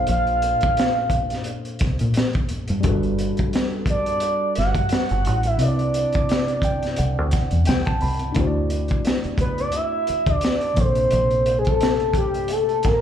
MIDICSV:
0, 0, Header, 1, 6, 480
1, 0, Start_track
1, 0, Tempo, 689655
1, 54, Time_signature, 4, 2, 24, 8
1, 9057, End_track
2, 0, Start_track
2, 0, Title_t, "Analog synth lead"
2, 0, Program_c, 0, 81
2, 71, Note_on_c, 0, 77, 87
2, 995, Note_off_c, 0, 77, 0
2, 2713, Note_on_c, 0, 74, 92
2, 3156, Note_off_c, 0, 74, 0
2, 3193, Note_on_c, 0, 78, 111
2, 3804, Note_on_c, 0, 76, 93
2, 3814, Note_off_c, 0, 78, 0
2, 3909, Note_on_c, 0, 74, 82
2, 3919, Note_off_c, 0, 76, 0
2, 5342, Note_off_c, 0, 74, 0
2, 6548, Note_on_c, 0, 71, 103
2, 6681, Note_on_c, 0, 74, 100
2, 6691, Note_off_c, 0, 71, 0
2, 6790, Note_on_c, 0, 76, 112
2, 6800, Note_off_c, 0, 74, 0
2, 7164, Note_on_c, 0, 74, 101
2, 7175, Note_off_c, 0, 76, 0
2, 7512, Note_on_c, 0, 72, 110
2, 7522, Note_off_c, 0, 74, 0
2, 8062, Note_off_c, 0, 72, 0
2, 8066, Note_on_c, 0, 68, 61
2, 8122, Note_on_c, 0, 69, 98
2, 8133, Note_off_c, 0, 68, 0
2, 8462, Note_off_c, 0, 69, 0
2, 8473, Note_on_c, 0, 67, 91
2, 8711, Note_on_c, 0, 69, 98
2, 8721, Note_off_c, 0, 67, 0
2, 8953, Note_on_c, 0, 70, 87
2, 8963, Note_off_c, 0, 69, 0
2, 9057, Note_off_c, 0, 70, 0
2, 9057, End_track
3, 0, Start_track
3, 0, Title_t, "Tine electric piano"
3, 0, Program_c, 1, 4
3, 0, Control_c, 1, 64, 127
3, 0, Note_on_c, 1, 46, 56
3, 0, Note_on_c, 1, 58, 51
3, 0, Note_on_c, 1, 62, 56
3, 0, Note_on_c, 1, 69, 53
3, 0, Note_on_c, 1, 72, 59
3, 1695, Note_off_c, 1, 46, 0
3, 1701, Note_off_c, 1, 58, 0
3, 1709, Note_off_c, 1, 62, 0
3, 1716, Note_off_c, 1, 69, 0
3, 1724, Note_off_c, 1, 72, 0
3, 1953, Note_on_c, 1, 55, 77
3, 1968, Note_on_c, 1, 62, 64
3, 1983, Note_on_c, 1, 66, 67
3, 1984, Control_c, 1, 64, 0
3, 1996, Note_on_c, 1, 69, 67
3, 2011, Note_on_c, 1, 71, 78
3, 2109, Control_c, 1, 64, 127
3, 3856, Note_off_c, 1, 55, 0
3, 3863, Note_off_c, 1, 62, 0
3, 3871, Note_off_c, 1, 66, 0
3, 3873, Note_on_c, 1, 48, 64
3, 3877, Note_off_c, 1, 69, 0
3, 3885, Note_off_c, 1, 71, 0
3, 3887, Note_on_c, 1, 60, 61
3, 3902, Control_c, 1, 64, 0
3, 3902, Note_on_c, 1, 64, 57
3, 3917, Note_on_c, 1, 71, 59
3, 3931, Note_on_c, 1, 73, 48
3, 3962, Note_off_c, 1, 73, 0
3, 3977, Note_on_c, 1, 74, 64
3, 4024, Control_c, 1, 64, 127
3, 4625, Note_on_c, 1, 79, 64
3, 4843, Note_off_c, 1, 79, 0
3, 4863, Note_on_c, 1, 78, 70
3, 5082, Note_off_c, 1, 78, 0
3, 5099, Note_on_c, 1, 78, 65
3, 5320, Note_off_c, 1, 78, 0
3, 5340, Note_on_c, 1, 79, 72
3, 5460, Note_off_c, 1, 79, 0
3, 5474, Note_on_c, 1, 81, 71
3, 5571, Note_off_c, 1, 81, 0
3, 5582, Note_on_c, 1, 83, 60
3, 5776, Note_off_c, 1, 48, 0
3, 5783, Note_off_c, 1, 60, 0
3, 5790, Note_off_c, 1, 64, 0
3, 5794, Note_on_c, 1, 62, 69
3, 5798, Note_off_c, 1, 71, 0
3, 5802, Note_off_c, 1, 83, 0
3, 5807, Note_on_c, 1, 57, 66
3, 5823, Note_on_c, 1, 64, 59
3, 5824, Control_c, 1, 64, 0
3, 5828, Note_off_c, 1, 74, 0
3, 5837, Note_on_c, 1, 66, 68
3, 5851, Note_on_c, 1, 72, 62
3, 5883, Note_off_c, 1, 72, 0
3, 5895, Note_on_c, 1, 74, 74
3, 5948, Control_c, 1, 64, 127
3, 7456, Note_off_c, 1, 62, 0
3, 7463, Note_off_c, 1, 57, 0
3, 7471, Note_off_c, 1, 64, 0
3, 7471, Note_on_c, 1, 48, 56
3, 7478, Note_off_c, 1, 66, 0
3, 7484, Note_on_c, 1, 58, 52
3, 7500, Note_on_c, 1, 62, 52
3, 7505, Control_c, 1, 64, 0
3, 7507, Note_off_c, 1, 74, 0
3, 7514, Note_on_c, 1, 69, 50
3, 7529, Note_on_c, 1, 72, 68
3, 7645, Control_c, 1, 64, 127
3, 9057, Note_off_c, 1, 48, 0
3, 9057, Note_off_c, 1, 58, 0
3, 9057, Note_off_c, 1, 62, 0
3, 9057, Note_off_c, 1, 69, 0
3, 9057, Note_off_c, 1, 72, 0
3, 9057, End_track
4, 0, Start_track
4, 0, Title_t, "Fingered electric bass"
4, 0, Program_c, 2, 33
4, 62, Note_on_c, 2, 34, 108
4, 372, Note_off_c, 2, 34, 0
4, 1264, Note_on_c, 2, 36, 65
4, 1372, Note_off_c, 2, 36, 0
4, 1399, Note_on_c, 2, 46, 81
4, 1484, Note_off_c, 2, 46, 0
4, 1878, Note_on_c, 2, 43, 90
4, 1984, Note_on_c, 2, 31, 113
4, 1994, Note_off_c, 2, 43, 0
4, 2294, Note_off_c, 2, 31, 0
4, 3187, Note_on_c, 2, 31, 70
4, 3293, Note_off_c, 2, 31, 0
4, 3307, Note_on_c, 2, 43, 70
4, 3398, Note_off_c, 2, 43, 0
4, 3558, Note_on_c, 2, 31, 93
4, 3666, Note_off_c, 2, 31, 0
4, 3666, Note_on_c, 2, 33, 88
4, 3904, Note_off_c, 2, 33, 0
4, 3904, Note_on_c, 2, 36, 121
4, 4214, Note_off_c, 2, 36, 0
4, 4868, Note_on_c, 2, 36, 84
4, 5000, Note_off_c, 2, 36, 0
4, 5000, Note_on_c, 2, 38, 83
4, 5085, Note_off_c, 2, 38, 0
4, 5236, Note_on_c, 2, 40, 72
4, 5323, Note_off_c, 2, 40, 0
4, 5345, Note_on_c, 2, 36, 86
4, 5452, Note_off_c, 2, 36, 0
4, 5587, Note_on_c, 2, 36, 88
4, 5784, Note_off_c, 2, 36, 0
4, 5822, Note_on_c, 2, 38, 104
4, 6223, Note_off_c, 2, 38, 0
4, 6531, Note_on_c, 2, 37, 76
4, 6734, Note_off_c, 2, 37, 0
4, 7147, Note_on_c, 2, 38, 66
4, 7238, Note_off_c, 2, 38, 0
4, 7501, Note_on_c, 2, 34, 89
4, 7701, Note_off_c, 2, 34, 0
4, 7746, Note_on_c, 2, 34, 111
4, 8913, Note_off_c, 2, 34, 0
4, 8946, Note_on_c, 2, 33, 76
4, 9057, Note_off_c, 2, 33, 0
4, 9057, End_track
5, 0, Start_track
5, 0, Title_t, "Muted fingered electric bass strokes"
5, 444, Note_on_c, 9, 29, 43
5, 513, Note_off_c, 9, 29, 0
5, 1748, Note_on_c, 9, 29, 46
5, 1817, Note_off_c, 9, 29, 0
5, 2365, Note_on_c, 9, 29, 41
5, 2435, Note_off_c, 9, 29, 0
5, 4285, Note_on_c, 9, 29, 43
5, 4355, Note_off_c, 9, 29, 0
5, 6439, Note_on_c, 9, 29, 46
5, 6508, Note_off_c, 9, 29, 0
5, 7027, Note_on_c, 9, 29, 39
5, 7097, Note_off_c, 9, 29, 0
5, 9057, End_track
6, 0, Start_track
6, 0, Title_t, "Drums"
6, 47, Note_on_c, 9, 42, 72
6, 117, Note_off_c, 9, 42, 0
6, 186, Note_on_c, 9, 42, 29
6, 256, Note_off_c, 9, 42, 0
6, 293, Note_on_c, 9, 42, 68
6, 363, Note_off_c, 9, 42, 0
6, 422, Note_on_c, 9, 42, 43
6, 439, Note_on_c, 9, 36, 92
6, 492, Note_off_c, 9, 42, 0
6, 509, Note_off_c, 9, 36, 0
6, 536, Note_on_c, 9, 42, 75
6, 554, Note_on_c, 9, 38, 107
6, 606, Note_off_c, 9, 42, 0
6, 623, Note_off_c, 9, 38, 0
6, 764, Note_on_c, 9, 36, 92
6, 768, Note_on_c, 9, 42, 69
6, 833, Note_off_c, 9, 36, 0
6, 838, Note_off_c, 9, 42, 0
6, 906, Note_on_c, 9, 42, 47
6, 926, Note_on_c, 9, 38, 30
6, 976, Note_off_c, 9, 42, 0
6, 995, Note_off_c, 9, 38, 0
6, 1002, Note_on_c, 9, 42, 73
6, 1072, Note_off_c, 9, 42, 0
6, 1148, Note_on_c, 9, 42, 35
6, 1218, Note_off_c, 9, 42, 0
6, 1246, Note_on_c, 9, 42, 69
6, 1259, Note_on_c, 9, 36, 94
6, 1272, Note_on_c, 9, 38, 33
6, 1316, Note_off_c, 9, 42, 0
6, 1329, Note_off_c, 9, 36, 0
6, 1342, Note_off_c, 9, 38, 0
6, 1386, Note_on_c, 9, 42, 53
6, 1455, Note_off_c, 9, 42, 0
6, 1488, Note_on_c, 9, 42, 71
6, 1513, Note_on_c, 9, 38, 96
6, 1558, Note_off_c, 9, 42, 0
6, 1583, Note_off_c, 9, 38, 0
6, 1623, Note_on_c, 9, 42, 35
6, 1636, Note_on_c, 9, 36, 92
6, 1693, Note_off_c, 9, 42, 0
6, 1706, Note_off_c, 9, 36, 0
6, 1731, Note_on_c, 9, 42, 67
6, 1800, Note_off_c, 9, 42, 0
6, 1863, Note_on_c, 9, 42, 52
6, 1932, Note_off_c, 9, 42, 0
6, 1971, Note_on_c, 9, 42, 78
6, 1977, Note_on_c, 9, 36, 107
6, 2041, Note_off_c, 9, 42, 0
6, 2047, Note_off_c, 9, 36, 0
6, 2109, Note_on_c, 9, 42, 32
6, 2179, Note_off_c, 9, 42, 0
6, 2217, Note_on_c, 9, 42, 66
6, 2286, Note_off_c, 9, 42, 0
6, 2346, Note_on_c, 9, 42, 39
6, 2361, Note_on_c, 9, 36, 84
6, 2415, Note_off_c, 9, 42, 0
6, 2430, Note_off_c, 9, 36, 0
6, 2457, Note_on_c, 9, 42, 74
6, 2474, Note_on_c, 9, 38, 109
6, 2527, Note_off_c, 9, 42, 0
6, 2544, Note_off_c, 9, 38, 0
6, 2685, Note_on_c, 9, 36, 100
6, 2692, Note_on_c, 9, 42, 76
6, 2755, Note_off_c, 9, 36, 0
6, 2761, Note_off_c, 9, 42, 0
6, 2828, Note_on_c, 9, 42, 47
6, 2897, Note_off_c, 9, 42, 0
6, 2925, Note_on_c, 9, 42, 75
6, 2995, Note_off_c, 9, 42, 0
6, 3170, Note_on_c, 9, 42, 70
6, 3196, Note_on_c, 9, 38, 31
6, 3240, Note_off_c, 9, 42, 0
6, 3266, Note_off_c, 9, 38, 0
6, 3303, Note_on_c, 9, 36, 90
6, 3305, Note_on_c, 9, 42, 49
6, 3373, Note_off_c, 9, 36, 0
6, 3375, Note_off_c, 9, 42, 0
6, 3403, Note_on_c, 9, 42, 68
6, 3428, Note_on_c, 9, 38, 111
6, 3473, Note_off_c, 9, 42, 0
6, 3498, Note_off_c, 9, 38, 0
6, 3543, Note_on_c, 9, 42, 37
6, 3613, Note_off_c, 9, 42, 0
6, 3653, Note_on_c, 9, 42, 73
6, 3722, Note_off_c, 9, 42, 0
6, 3781, Note_on_c, 9, 42, 49
6, 3851, Note_off_c, 9, 42, 0
6, 3889, Note_on_c, 9, 42, 78
6, 3959, Note_off_c, 9, 42, 0
6, 4029, Note_on_c, 9, 42, 33
6, 4099, Note_off_c, 9, 42, 0
6, 4134, Note_on_c, 9, 42, 68
6, 4204, Note_off_c, 9, 42, 0
6, 4263, Note_on_c, 9, 42, 42
6, 4281, Note_on_c, 9, 36, 87
6, 4332, Note_off_c, 9, 42, 0
6, 4351, Note_off_c, 9, 36, 0
6, 4378, Note_on_c, 9, 42, 74
6, 4396, Note_on_c, 9, 38, 103
6, 4448, Note_off_c, 9, 42, 0
6, 4466, Note_off_c, 9, 38, 0
6, 4510, Note_on_c, 9, 42, 34
6, 4580, Note_off_c, 9, 42, 0
6, 4606, Note_on_c, 9, 36, 84
6, 4614, Note_on_c, 9, 42, 74
6, 4676, Note_off_c, 9, 36, 0
6, 4683, Note_off_c, 9, 42, 0
6, 4751, Note_on_c, 9, 42, 43
6, 4770, Note_on_c, 9, 38, 35
6, 4820, Note_off_c, 9, 42, 0
6, 4840, Note_off_c, 9, 38, 0
6, 4847, Note_on_c, 9, 42, 77
6, 4917, Note_off_c, 9, 42, 0
6, 5090, Note_on_c, 9, 42, 62
6, 5102, Note_on_c, 9, 36, 87
6, 5116, Note_on_c, 9, 38, 28
6, 5159, Note_off_c, 9, 42, 0
6, 5171, Note_off_c, 9, 36, 0
6, 5185, Note_off_c, 9, 38, 0
6, 5225, Note_on_c, 9, 42, 47
6, 5295, Note_off_c, 9, 42, 0
6, 5327, Note_on_c, 9, 42, 74
6, 5352, Note_on_c, 9, 38, 100
6, 5396, Note_off_c, 9, 42, 0
6, 5421, Note_off_c, 9, 38, 0
6, 5465, Note_on_c, 9, 42, 36
6, 5478, Note_on_c, 9, 36, 93
6, 5535, Note_off_c, 9, 42, 0
6, 5548, Note_off_c, 9, 36, 0
6, 5572, Note_on_c, 9, 46, 51
6, 5641, Note_off_c, 9, 46, 0
6, 5703, Note_on_c, 9, 42, 49
6, 5772, Note_off_c, 9, 42, 0
6, 5808, Note_on_c, 9, 42, 68
6, 5819, Note_on_c, 9, 36, 99
6, 5878, Note_off_c, 9, 42, 0
6, 5888, Note_off_c, 9, 36, 0
6, 6055, Note_on_c, 9, 42, 66
6, 6125, Note_off_c, 9, 42, 0
6, 6182, Note_on_c, 9, 42, 37
6, 6201, Note_on_c, 9, 36, 83
6, 6252, Note_off_c, 9, 42, 0
6, 6271, Note_off_c, 9, 36, 0
6, 6296, Note_on_c, 9, 42, 74
6, 6314, Note_on_c, 9, 38, 106
6, 6366, Note_off_c, 9, 42, 0
6, 6383, Note_off_c, 9, 38, 0
6, 6430, Note_on_c, 9, 42, 29
6, 6499, Note_off_c, 9, 42, 0
6, 6526, Note_on_c, 9, 36, 88
6, 6532, Note_on_c, 9, 42, 73
6, 6596, Note_off_c, 9, 36, 0
6, 6601, Note_off_c, 9, 42, 0
6, 6668, Note_on_c, 9, 42, 46
6, 6738, Note_off_c, 9, 42, 0
6, 6763, Note_on_c, 9, 42, 69
6, 6833, Note_off_c, 9, 42, 0
6, 7009, Note_on_c, 9, 42, 65
6, 7079, Note_off_c, 9, 42, 0
6, 7144, Note_on_c, 9, 36, 96
6, 7146, Note_on_c, 9, 42, 48
6, 7214, Note_off_c, 9, 36, 0
6, 7216, Note_off_c, 9, 42, 0
6, 7245, Note_on_c, 9, 42, 76
6, 7270, Note_on_c, 9, 38, 103
6, 7315, Note_off_c, 9, 42, 0
6, 7340, Note_off_c, 9, 38, 0
6, 7385, Note_on_c, 9, 42, 37
6, 7454, Note_off_c, 9, 42, 0
6, 7492, Note_on_c, 9, 42, 66
6, 7496, Note_on_c, 9, 36, 96
6, 7562, Note_off_c, 9, 42, 0
6, 7566, Note_off_c, 9, 36, 0
6, 7623, Note_on_c, 9, 42, 52
6, 7693, Note_off_c, 9, 42, 0
6, 7730, Note_on_c, 9, 42, 76
6, 7799, Note_off_c, 9, 42, 0
6, 7869, Note_on_c, 9, 42, 32
6, 7938, Note_off_c, 9, 42, 0
6, 7975, Note_on_c, 9, 42, 70
6, 8044, Note_off_c, 9, 42, 0
6, 8106, Note_on_c, 9, 42, 41
6, 8122, Note_on_c, 9, 36, 86
6, 8176, Note_off_c, 9, 42, 0
6, 8192, Note_off_c, 9, 36, 0
6, 8217, Note_on_c, 9, 42, 85
6, 8234, Note_on_c, 9, 38, 109
6, 8286, Note_off_c, 9, 42, 0
6, 8304, Note_off_c, 9, 38, 0
6, 8350, Note_on_c, 9, 42, 34
6, 8420, Note_off_c, 9, 42, 0
6, 8446, Note_on_c, 9, 36, 90
6, 8453, Note_on_c, 9, 42, 78
6, 8516, Note_off_c, 9, 36, 0
6, 8522, Note_off_c, 9, 42, 0
6, 8591, Note_on_c, 9, 42, 45
6, 8660, Note_off_c, 9, 42, 0
6, 8686, Note_on_c, 9, 42, 70
6, 8755, Note_off_c, 9, 42, 0
6, 8831, Note_on_c, 9, 42, 32
6, 8900, Note_off_c, 9, 42, 0
6, 8929, Note_on_c, 9, 42, 61
6, 8941, Note_on_c, 9, 36, 94
6, 8955, Note_on_c, 9, 38, 32
6, 8998, Note_off_c, 9, 42, 0
6, 9011, Note_off_c, 9, 36, 0
6, 9024, Note_off_c, 9, 38, 0
6, 9057, End_track
0, 0, End_of_file